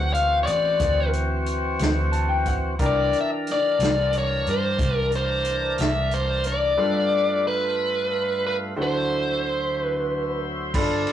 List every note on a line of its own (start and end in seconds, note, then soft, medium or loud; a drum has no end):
0.00 0.44 D2 medium
0.00 2.76 E3 medium
0.00 2.75 C4 medium
0.00 2.76 C4 soft
0.00 2.76 E4 soft
0.00 2.75 F#4 medium
0.00 2.76 F#4 soft
0.00 2.76 C5 medium
0.00 0.13 F#5 medium
0.13 0.38 F5 medium
0.13 closed hi-hat medium
0.43 0.49 C#5 soft
0.43 1.09 D5 medium
0.43 closed hi-hat medium
0.48 0.78 A1 medium
0.80 1.76 D2 medium
0.80 kick loud
0.80 closed hi-hat medium
1.13 closed hi-hat medium
1.46 closed hi-hat medium
1.79 2.76 D2 medium
1.79 snare medium
1.79 closed hi-hat medium
2.12 2.28 A5 medium
2.12 closed hi-hat soft
2.29 2.45 G5 soft
2.46 2.78 F#5 soft
2.46 kick medium
2.46 closed hi-hat medium
2.79 3.10 C2 medium
2.79 6.73 E3 medium
2.79 6.73 D4 soft
2.79 6.74 D4 medium
2.79 6.73 E4 soft
2.79 6.74 G4 soft
2.79 6.73 A#4 medium
2.79 6.74 A#4 medium
2.79 kick medium
2.79 closed hi-hat medium
2.86 3.17 D5 medium
3.13 closed hi-hat soft
3.21 3.29 E5 medium
3.47 snare soft
3.47 closed hi-hat medium
3.52 4.17 D5 medium
3.79 4.41 C2 medium
3.79 snare loud
3.79 closed hi-hat medium
4.13 closed hi-hat medium
4.18 4.49 C#5 medium
4.46 4.76 G2 medium
4.46 closed hi-hat soft
4.50 4.95 C5 medium
4.79 5.74 C2 medium
4.79 kick loud
4.79 closed hi-hat medium
4.95 5.10 A#4 medium
5.12 closed hi-hat soft
5.16 5.76 C5 medium
5.45 closed hi-hat medium
5.78 6.74 C2 medium
5.78 6.14 E5 medium
5.78 snare medium
5.78 closed hi-hat medium
6.11 6.43 C5 medium
6.11 closed hi-hat medium
6.44 7.47 D5 medium
6.44 closed hi-hat medium
6.77 8.74 G2 medium
6.77 8.72 G3 soft
6.77 8.74 A3 medium
6.77 8.72 D4 soft
6.77 8.74 F4 medium
6.77 8.72 F4 soft
6.77 8.72 A4 soft
6.77 8.72 B4 medium
6.77 8.75 B4 medium
7.47 8.45 B4 medium
8.47 8.55 B4 medium
8.76 10.73 D2 medium
8.76 10.71 D3 soft
8.76 10.73 F#3 medium
8.76 10.70 E4 soft
8.76 10.73 E4 medium
8.76 10.71 F#4 soft
8.76 10.71 A4 soft
8.76 10.71 C5 medium
8.76 10.73 C5 medium
8.82 9.84 C5 medium
9.84 10.40 B4 medium
10.74 11.04 G1 medium
10.74 11.12 F3 medium
10.74 11.12 D4 medium
10.74 11.12 F4 medium
10.74 11.12 A4 medium
10.74 11.12 B5 medium
10.74 kick loud
10.74 crash medium
11.07 ride medium